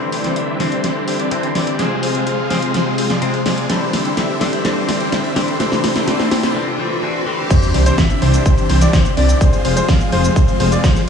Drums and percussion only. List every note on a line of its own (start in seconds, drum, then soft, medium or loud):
0.12 open hi-hat loud
0.24 snare soft
0.24 closed hi-hat medium
0.36 closed hi-hat medium
0.60 snare soft
0.60 open hi-hat medium
0.72 closed hi-hat medium
0.84 snare medium
0.84 closed hi-hat medium
1.08 open hi-hat loud
1.20 closed hi-hat medium
1.31 closed hi-hat medium
1.43 closed hi-hat soft
1.55 snare medium
1.55 open hi-hat loud
1.67 closed hi-hat medium
1.79 snare medium
1.79 closed hi-hat medium
2.03 open hi-hat loud
2.15 closed hi-hat medium
2.27 closed hi-hat medium
2.50 snare medium
2.50 open hi-hat loud
2.62 closed hi-hat medium
2.74 snare medium
2.74 closed hi-hat medium
2.98 open hi-hat loud
3.10 snare medium
3.10 closed hi-hat medium
3.22 closed hi-hat medium
3.34 closed hi-hat soft
3.46 snare medium
3.46 open hi-hat loud
3.58 closed hi-hat medium
3.70 snare medium
3.70 closed hi-hat medium
3.93 snare medium
3.93 open hi-hat loud
4.05 closed hi-hat medium
4.17 snare medium
4.17 closed hi-hat medium
4.41 snare medium
4.41 open hi-hat loud
4.53 closed hi-hat medium
4.65 snare medium
4.65 closed hi-hat medium
4.89 snare medium
4.89 open hi-hat loud
5.00 closed hi-hat medium
5.12 snare medium
5.12 closed hi-hat medium
5.24 closed hi-hat soft
5.36 snare medium
5.36 open hi-hat loud
5.48 closed hi-hat medium
5.60 snare medium
5.60 closed hi-hat medium
5.72 snare medium
5.84 snare medium
5.84 open hi-hat loud
5.96 snare medium
5.96 closed hi-hat medium
6.08 snare medium
6.08 closed hi-hat medium
6.19 snare medium
6.31 snare loud
6.31 open hi-hat loud
6.43 snare medium
6.43 closed hi-hat medium
7.50 kick loud
7.50 closed hi-hat medium
7.50 crash loud
7.50 shaker medium
7.62 closed hi-hat soft
7.62 shaker soft
7.74 open hi-hat loud
7.86 closed hi-hat medium
7.86 shaker medium
7.98 kick loud
7.98 snare loud
7.98 closed hi-hat medium
7.98 shaker medium
8.10 closed hi-hat soft
8.10 shaker soft
8.22 open hi-hat medium
8.34 closed hi-hat medium
8.34 shaker medium
8.46 kick loud
8.46 closed hi-hat medium
8.46 shaker medium
8.58 closed hi-hat soft
8.58 shaker soft
8.69 open hi-hat loud
8.81 snare soft
8.81 closed hi-hat medium
8.81 shaker medium
8.93 kick loud
8.93 snare loud
8.93 closed hi-hat medium
8.93 shaker medium
9.05 closed hi-hat soft
9.05 shaker soft
9.17 open hi-hat medium
9.29 closed hi-hat medium
9.29 shaker medium
9.41 kick loud
9.41 closed hi-hat medium
9.41 shaker medium
9.53 closed hi-hat soft
9.53 shaker soft
9.65 open hi-hat loud
9.77 closed hi-hat medium
9.77 shaker medium
9.89 kick loud
9.89 snare loud
9.89 closed hi-hat medium
9.89 shaker medium
10.00 closed hi-hat soft
10.00 shaker soft
10.12 open hi-hat loud
10.24 closed hi-hat medium
10.24 shaker medium
10.36 kick loud
10.36 closed hi-hat medium
10.36 shaker medium
10.48 closed hi-hat soft
10.48 shaker soft
10.60 open hi-hat loud
10.72 closed hi-hat medium
10.72 shaker medium
10.84 kick loud
10.84 snare loud
10.84 closed hi-hat medium
10.84 shaker medium
10.96 snare soft
10.96 closed hi-hat soft
10.96 shaker soft